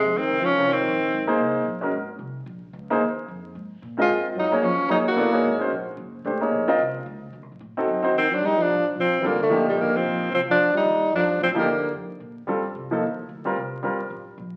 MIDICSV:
0, 0, Header, 1, 6, 480
1, 0, Start_track
1, 0, Tempo, 270758
1, 1496, Time_signature, 4, 2, 24, 8
1, 25823, End_track
2, 0, Start_track
2, 0, Title_t, "Grand piano"
2, 0, Program_c, 0, 0
2, 1033, Note_on_c, 0, 60, 59
2, 1041, Note_on_c, 0, 65, 53
2, 1046, Note_on_c, 0, 70, 50
2, 1060, Note_on_c, 0, 73, 58
2, 1276, Note_off_c, 0, 60, 0
2, 1280, Note_off_c, 0, 65, 0
2, 1283, Note_off_c, 0, 70, 0
2, 1290, Note_off_c, 0, 73, 0
2, 2256, Note_on_c, 0, 58, 81
2, 2262, Note_on_c, 0, 63, 75
2, 2264, Note_on_c, 0, 68, 70
2, 2285, Note_on_c, 0, 72, 90
2, 2896, Note_off_c, 0, 58, 0
2, 2899, Note_off_c, 0, 63, 0
2, 2900, Note_off_c, 0, 68, 0
2, 2911, Note_off_c, 0, 72, 0
2, 3211, Note_on_c, 0, 56, 62
2, 3218, Note_on_c, 0, 61, 55
2, 3235, Note_on_c, 0, 66, 56
2, 3250, Note_on_c, 0, 70, 68
2, 3394, Note_off_c, 0, 56, 0
2, 3397, Note_off_c, 0, 61, 0
2, 3406, Note_off_c, 0, 66, 0
2, 3413, Note_off_c, 0, 70, 0
2, 5147, Note_on_c, 0, 58, 79
2, 5155, Note_on_c, 0, 63, 74
2, 5168, Note_on_c, 0, 68, 74
2, 5183, Note_on_c, 0, 72, 81
2, 5322, Note_off_c, 0, 58, 0
2, 5326, Note_off_c, 0, 63, 0
2, 5332, Note_off_c, 0, 68, 0
2, 5340, Note_off_c, 0, 72, 0
2, 7047, Note_on_c, 0, 60, 62
2, 7057, Note_on_c, 0, 65, 57
2, 7064, Note_on_c, 0, 70, 55
2, 7083, Note_on_c, 0, 75, 69
2, 7692, Note_off_c, 0, 60, 0
2, 7696, Note_off_c, 0, 65, 0
2, 7700, Note_off_c, 0, 70, 0
2, 7709, Note_off_c, 0, 75, 0
2, 8010, Note_on_c, 0, 58, 74
2, 8013, Note_on_c, 0, 63, 59
2, 8024, Note_on_c, 0, 68, 66
2, 8038, Note_on_c, 0, 73, 82
2, 8193, Note_off_c, 0, 58, 0
2, 8194, Note_off_c, 0, 63, 0
2, 8200, Note_off_c, 0, 68, 0
2, 8207, Note_off_c, 0, 73, 0
2, 8675, Note_on_c, 0, 58, 70
2, 8683, Note_on_c, 0, 63, 66
2, 8700, Note_on_c, 0, 68, 65
2, 8707, Note_on_c, 0, 73, 80
2, 8937, Note_off_c, 0, 58, 0
2, 8941, Note_off_c, 0, 63, 0
2, 8949, Note_off_c, 0, 68, 0
2, 8953, Note_off_c, 0, 73, 0
2, 9150, Note_on_c, 0, 59, 69
2, 9153, Note_on_c, 0, 64, 62
2, 9171, Note_on_c, 0, 69, 66
2, 9178, Note_on_c, 0, 74, 75
2, 9414, Note_off_c, 0, 59, 0
2, 9416, Note_off_c, 0, 64, 0
2, 9425, Note_off_c, 0, 69, 0
2, 9428, Note_off_c, 0, 74, 0
2, 9436, Note_on_c, 0, 58, 73
2, 9447, Note_on_c, 0, 63, 64
2, 9456, Note_on_c, 0, 68, 64
2, 9466, Note_on_c, 0, 73, 78
2, 9870, Note_off_c, 0, 58, 0
2, 9875, Note_off_c, 0, 63, 0
2, 9879, Note_off_c, 0, 68, 0
2, 9884, Note_off_c, 0, 73, 0
2, 9914, Note_on_c, 0, 56, 68
2, 9924, Note_on_c, 0, 61, 60
2, 9943, Note_on_c, 0, 66, 58
2, 9953, Note_on_c, 0, 72, 79
2, 10104, Note_off_c, 0, 56, 0
2, 10110, Note_off_c, 0, 61, 0
2, 10119, Note_off_c, 0, 66, 0
2, 10124, Note_off_c, 0, 72, 0
2, 11086, Note_on_c, 0, 62, 52
2, 11087, Note_on_c, 0, 57, 54
2, 11098, Note_on_c, 0, 67, 52
2, 11117, Note_on_c, 0, 72, 65
2, 11342, Note_off_c, 0, 62, 0
2, 11343, Note_off_c, 0, 57, 0
2, 11348, Note_off_c, 0, 67, 0
2, 11357, Note_off_c, 0, 72, 0
2, 11360, Note_on_c, 0, 58, 62
2, 11372, Note_on_c, 0, 63, 55
2, 11383, Note_on_c, 0, 68, 56
2, 11391, Note_on_c, 0, 73, 61
2, 11791, Note_off_c, 0, 58, 0
2, 11797, Note_off_c, 0, 63, 0
2, 11802, Note_off_c, 0, 68, 0
2, 11806, Note_off_c, 0, 73, 0
2, 11836, Note_on_c, 0, 60, 84
2, 11841, Note_on_c, 0, 65, 79
2, 11847, Note_on_c, 0, 70, 74
2, 11870, Note_on_c, 0, 75, 88
2, 12025, Note_off_c, 0, 60, 0
2, 12028, Note_off_c, 0, 65, 0
2, 12031, Note_off_c, 0, 70, 0
2, 12042, Note_off_c, 0, 75, 0
2, 13777, Note_on_c, 0, 60, 69
2, 13784, Note_on_c, 0, 63, 65
2, 13801, Note_on_c, 0, 69, 71
2, 13802, Note_on_c, 0, 66, 66
2, 14200, Note_off_c, 0, 60, 0
2, 14222, Note_off_c, 0, 63, 0
2, 14225, Note_off_c, 0, 66, 0
2, 14227, Note_on_c, 0, 60, 76
2, 14239, Note_off_c, 0, 69, 0
2, 14249, Note_on_c, 0, 63, 68
2, 14252, Note_on_c, 0, 66, 63
2, 14265, Note_on_c, 0, 72, 84
2, 14420, Note_off_c, 0, 60, 0
2, 14431, Note_off_c, 0, 63, 0
2, 14432, Note_off_c, 0, 66, 0
2, 14439, Note_off_c, 0, 72, 0
2, 16355, Note_on_c, 0, 55, 63
2, 16367, Note_on_c, 0, 60, 55
2, 16385, Note_on_c, 0, 65, 57
2, 16389, Note_on_c, 0, 69, 65
2, 16615, Note_off_c, 0, 55, 0
2, 16622, Note_off_c, 0, 60, 0
2, 16631, Note_off_c, 0, 65, 0
2, 16633, Note_off_c, 0, 69, 0
2, 16840, Note_on_c, 0, 53, 73
2, 16856, Note_on_c, 0, 58, 69
2, 16865, Note_on_c, 0, 63, 66
2, 16874, Note_on_c, 0, 67, 77
2, 18166, Note_off_c, 0, 53, 0
2, 18175, Note_off_c, 0, 58, 0
2, 18179, Note_off_c, 0, 63, 0
2, 18183, Note_off_c, 0, 67, 0
2, 20470, Note_on_c, 0, 53, 73
2, 20481, Note_on_c, 0, 58, 62
2, 20491, Note_on_c, 0, 63, 67
2, 20493, Note_on_c, 0, 67, 77
2, 20662, Note_off_c, 0, 53, 0
2, 20667, Note_off_c, 0, 58, 0
2, 20672, Note_off_c, 0, 63, 0
2, 20674, Note_off_c, 0, 67, 0
2, 22105, Note_on_c, 0, 55, 62
2, 22120, Note_on_c, 0, 60, 56
2, 22130, Note_on_c, 0, 65, 54
2, 22138, Note_on_c, 0, 69, 71
2, 22371, Note_off_c, 0, 55, 0
2, 22378, Note_off_c, 0, 60, 0
2, 22384, Note_off_c, 0, 65, 0
2, 22387, Note_off_c, 0, 69, 0
2, 22888, Note_on_c, 0, 53, 66
2, 22897, Note_on_c, 0, 58, 58
2, 22906, Note_on_c, 0, 63, 63
2, 22921, Note_on_c, 0, 69, 74
2, 23071, Note_off_c, 0, 53, 0
2, 23075, Note_off_c, 0, 58, 0
2, 23080, Note_off_c, 0, 63, 0
2, 23087, Note_off_c, 0, 69, 0
2, 23842, Note_on_c, 0, 55, 61
2, 23852, Note_on_c, 0, 60, 64
2, 23859, Note_on_c, 0, 65, 61
2, 23873, Note_on_c, 0, 70, 71
2, 24028, Note_off_c, 0, 55, 0
2, 24033, Note_off_c, 0, 60, 0
2, 24036, Note_off_c, 0, 65, 0
2, 24043, Note_off_c, 0, 70, 0
2, 24512, Note_on_c, 0, 55, 63
2, 24521, Note_on_c, 0, 60, 53
2, 24534, Note_on_c, 0, 65, 53
2, 24545, Note_on_c, 0, 70, 67
2, 24774, Note_off_c, 0, 55, 0
2, 24779, Note_off_c, 0, 60, 0
2, 24786, Note_off_c, 0, 65, 0
2, 24791, Note_off_c, 0, 70, 0
2, 25823, End_track
3, 0, Start_track
3, 0, Title_t, "Tenor saxophone"
3, 0, Program_c, 1, 66
3, 0, Note_on_c, 1, 56, 85
3, 321, Note_on_c, 1, 60, 93
3, 348, Note_off_c, 1, 56, 0
3, 791, Note_on_c, 1, 61, 107
3, 818, Note_off_c, 1, 60, 0
3, 1283, Note_on_c, 1, 60, 96
3, 1310, Note_off_c, 1, 61, 0
3, 2250, Note_off_c, 1, 60, 0
3, 7116, Note_on_c, 1, 65, 85
3, 7535, Note_off_c, 1, 65, 0
3, 7787, Note_on_c, 1, 63, 85
3, 8229, Note_on_c, 1, 61, 92
3, 8256, Note_off_c, 1, 63, 0
3, 8694, Note_off_c, 1, 61, 0
3, 8705, Note_on_c, 1, 63, 86
3, 8828, Note_off_c, 1, 63, 0
3, 9005, Note_on_c, 1, 66, 93
3, 9884, Note_off_c, 1, 66, 0
3, 14496, Note_on_c, 1, 60, 92
3, 14788, Note_on_c, 1, 62, 91
3, 14814, Note_off_c, 1, 60, 0
3, 14981, Note_on_c, 1, 63, 100
3, 15007, Note_off_c, 1, 62, 0
3, 15274, Note_on_c, 1, 62, 97
3, 15301, Note_off_c, 1, 63, 0
3, 15723, Note_off_c, 1, 62, 0
3, 15959, Note_on_c, 1, 60, 91
3, 16426, Note_on_c, 1, 58, 84
3, 16453, Note_off_c, 1, 60, 0
3, 16679, Note_off_c, 1, 58, 0
3, 16710, Note_on_c, 1, 57, 93
3, 17130, Note_off_c, 1, 57, 0
3, 17173, Note_on_c, 1, 55, 81
3, 17385, Note_on_c, 1, 58, 85
3, 17412, Note_off_c, 1, 55, 0
3, 17662, Note_on_c, 1, 60, 86
3, 17689, Note_off_c, 1, 58, 0
3, 18318, Note_off_c, 1, 60, 0
3, 18342, Note_on_c, 1, 60, 86
3, 18457, Note_off_c, 1, 60, 0
3, 18630, Note_on_c, 1, 62, 99
3, 19050, Note_off_c, 1, 62, 0
3, 19090, Note_on_c, 1, 63, 93
3, 19705, Note_off_c, 1, 63, 0
3, 19776, Note_on_c, 1, 62, 95
3, 20203, Note_off_c, 1, 62, 0
3, 20271, Note_on_c, 1, 60, 86
3, 20384, Note_off_c, 1, 60, 0
3, 20542, Note_on_c, 1, 58, 80
3, 21152, Note_off_c, 1, 58, 0
3, 25823, End_track
4, 0, Start_track
4, 0, Title_t, "Trombone"
4, 0, Program_c, 2, 57
4, 0, Note_on_c, 2, 48, 68
4, 292, Note_on_c, 2, 51, 78
4, 319, Note_off_c, 2, 48, 0
4, 744, Note_on_c, 2, 53, 82
4, 771, Note_off_c, 2, 51, 0
4, 1217, Note_on_c, 2, 51, 75
4, 1244, Note_off_c, 2, 53, 0
4, 2217, Note_off_c, 2, 51, 0
4, 7067, Note_on_c, 2, 56, 77
4, 7508, Note_off_c, 2, 56, 0
4, 7726, Note_on_c, 2, 54, 78
4, 8210, Note_on_c, 2, 53, 75
4, 8237, Note_off_c, 2, 54, 0
4, 8658, Note_off_c, 2, 53, 0
4, 8669, Note_on_c, 2, 54, 77
4, 8801, Note_off_c, 2, 54, 0
4, 8975, Note_on_c, 2, 58, 84
4, 9867, Note_off_c, 2, 58, 0
4, 14468, Note_on_c, 2, 51, 85
4, 14747, Note_on_c, 2, 54, 78
4, 14773, Note_off_c, 2, 51, 0
4, 14937, Note_on_c, 2, 55, 86
4, 14963, Note_off_c, 2, 54, 0
4, 15211, Note_on_c, 2, 53, 83
4, 15238, Note_off_c, 2, 55, 0
4, 15692, Note_off_c, 2, 53, 0
4, 15916, Note_on_c, 2, 53, 82
4, 16381, Note_on_c, 2, 50, 72
4, 16407, Note_off_c, 2, 53, 0
4, 16656, Note_off_c, 2, 50, 0
4, 16668, Note_on_c, 2, 50, 78
4, 17107, Note_off_c, 2, 50, 0
4, 17150, Note_on_c, 2, 46, 65
4, 17339, Note_on_c, 2, 50, 74
4, 17365, Note_off_c, 2, 46, 0
4, 17629, Note_on_c, 2, 53, 77
4, 17656, Note_off_c, 2, 50, 0
4, 18290, Note_off_c, 2, 53, 0
4, 18301, Note_on_c, 2, 53, 72
4, 18425, Note_off_c, 2, 53, 0
4, 18585, Note_on_c, 2, 53, 87
4, 19026, Note_off_c, 2, 53, 0
4, 19042, Note_on_c, 2, 55, 79
4, 19680, Note_off_c, 2, 55, 0
4, 19746, Note_on_c, 2, 53, 76
4, 20186, Note_off_c, 2, 53, 0
4, 20228, Note_on_c, 2, 53, 74
4, 20351, Note_off_c, 2, 53, 0
4, 20506, Note_on_c, 2, 50, 68
4, 21133, Note_off_c, 2, 50, 0
4, 25823, End_track
5, 0, Start_track
5, 0, Title_t, "Upright bass"
5, 0, Program_c, 3, 32
5, 40, Note_on_c, 3, 41, 83
5, 514, Note_off_c, 3, 41, 0
5, 524, Note_on_c, 3, 37, 84
5, 990, Note_off_c, 3, 37, 0
5, 1000, Note_on_c, 3, 36, 78
5, 1459, Note_off_c, 3, 36, 0
5, 1469, Note_on_c, 3, 34, 90
5, 1948, Note_off_c, 3, 34, 0
5, 1956, Note_on_c, 3, 32, 82
5, 2426, Note_off_c, 3, 32, 0
5, 2436, Note_on_c, 3, 36, 94
5, 2905, Note_off_c, 3, 36, 0
5, 2916, Note_on_c, 3, 34, 85
5, 3181, Note_off_c, 3, 34, 0
5, 3394, Note_on_c, 3, 32, 83
5, 3867, Note_off_c, 3, 32, 0
5, 3877, Note_on_c, 3, 36, 87
5, 4352, Note_off_c, 3, 36, 0
5, 4362, Note_on_c, 3, 34, 88
5, 4834, Note_off_c, 3, 34, 0
5, 4845, Note_on_c, 3, 37, 89
5, 5316, Note_off_c, 3, 37, 0
5, 5325, Note_on_c, 3, 39, 83
5, 5796, Note_off_c, 3, 39, 0
5, 5817, Note_on_c, 3, 41, 83
5, 6282, Note_off_c, 3, 41, 0
5, 6295, Note_on_c, 3, 44, 87
5, 6761, Note_off_c, 3, 44, 0
5, 6776, Note_on_c, 3, 46, 86
5, 7232, Note_off_c, 3, 46, 0
5, 7242, Note_on_c, 3, 44, 85
5, 7708, Note_off_c, 3, 44, 0
5, 7719, Note_on_c, 3, 42, 82
5, 8184, Note_off_c, 3, 42, 0
5, 8195, Note_on_c, 3, 41, 93
5, 8670, Note_off_c, 3, 41, 0
5, 8679, Note_on_c, 3, 39, 88
5, 9134, Note_off_c, 3, 39, 0
5, 9144, Note_on_c, 3, 37, 85
5, 9625, Note_off_c, 3, 37, 0
5, 9632, Note_on_c, 3, 32, 89
5, 10098, Note_off_c, 3, 32, 0
5, 10109, Note_on_c, 3, 34, 87
5, 10579, Note_off_c, 3, 34, 0
5, 10590, Note_on_c, 3, 30, 83
5, 11059, Note_off_c, 3, 30, 0
5, 11070, Note_on_c, 3, 32, 89
5, 11547, Note_off_c, 3, 32, 0
5, 11554, Note_on_c, 3, 34, 85
5, 12020, Note_off_c, 3, 34, 0
5, 12031, Note_on_c, 3, 36, 94
5, 12502, Note_off_c, 3, 36, 0
5, 12513, Note_on_c, 3, 37, 92
5, 12979, Note_off_c, 3, 37, 0
5, 12990, Note_on_c, 3, 38, 86
5, 13160, Note_off_c, 3, 38, 0
5, 13160, Note_on_c, 3, 36, 58
5, 13316, Note_off_c, 3, 36, 0
5, 13327, Note_on_c, 3, 33, 64
5, 13469, Note_off_c, 3, 33, 0
5, 13479, Note_on_c, 3, 45, 86
5, 13951, Note_off_c, 3, 45, 0
5, 13961, Note_on_c, 3, 42, 88
5, 14427, Note_off_c, 3, 42, 0
5, 14438, Note_on_c, 3, 38, 84
5, 14902, Note_off_c, 3, 38, 0
5, 14913, Note_on_c, 3, 31, 81
5, 15384, Note_off_c, 3, 31, 0
5, 15395, Note_on_c, 3, 33, 84
5, 15869, Note_off_c, 3, 33, 0
5, 15880, Note_on_c, 3, 34, 83
5, 16343, Note_off_c, 3, 34, 0
5, 16354, Note_on_c, 3, 29, 76
5, 16828, Note_off_c, 3, 29, 0
5, 16836, Note_on_c, 3, 31, 83
5, 17104, Note_off_c, 3, 31, 0
5, 17317, Note_on_c, 3, 33, 82
5, 17790, Note_off_c, 3, 33, 0
5, 17805, Note_on_c, 3, 34, 84
5, 18268, Note_off_c, 3, 34, 0
5, 18278, Note_on_c, 3, 36, 78
5, 18751, Note_off_c, 3, 36, 0
5, 18759, Note_on_c, 3, 38, 81
5, 19232, Note_off_c, 3, 38, 0
5, 19240, Note_on_c, 3, 39, 84
5, 19704, Note_off_c, 3, 39, 0
5, 19715, Note_on_c, 3, 41, 91
5, 20190, Note_off_c, 3, 41, 0
5, 20197, Note_on_c, 3, 45, 86
5, 20659, Note_off_c, 3, 45, 0
5, 20670, Note_on_c, 3, 43, 81
5, 21131, Note_off_c, 3, 43, 0
5, 21142, Note_on_c, 3, 41, 86
5, 21417, Note_off_c, 3, 41, 0
5, 21630, Note_on_c, 3, 46, 80
5, 22107, Note_off_c, 3, 46, 0
5, 22119, Note_on_c, 3, 43, 83
5, 22592, Note_off_c, 3, 43, 0
5, 22600, Note_on_c, 3, 36, 85
5, 23072, Note_off_c, 3, 36, 0
5, 23088, Note_on_c, 3, 39, 77
5, 23546, Note_off_c, 3, 39, 0
5, 23557, Note_on_c, 3, 38, 85
5, 24030, Note_off_c, 3, 38, 0
5, 24040, Note_on_c, 3, 36, 85
5, 24502, Note_off_c, 3, 36, 0
5, 24513, Note_on_c, 3, 31, 83
5, 24988, Note_off_c, 3, 31, 0
5, 24998, Note_on_c, 3, 33, 84
5, 25471, Note_off_c, 3, 33, 0
5, 25486, Note_on_c, 3, 34, 91
5, 25823, Note_off_c, 3, 34, 0
5, 25823, End_track
6, 0, Start_track
6, 0, Title_t, "Muted upright bass strokes"
6, 3192, Note_on_c, 9, 29, 40
6, 3369, Note_off_c, 9, 29, 0
6, 17119, Note_on_c, 9, 29, 37
6, 17296, Note_off_c, 9, 29, 0
6, 21433, Note_on_c, 9, 29, 38
6, 21610, Note_off_c, 9, 29, 0
6, 25823, End_track
0, 0, End_of_file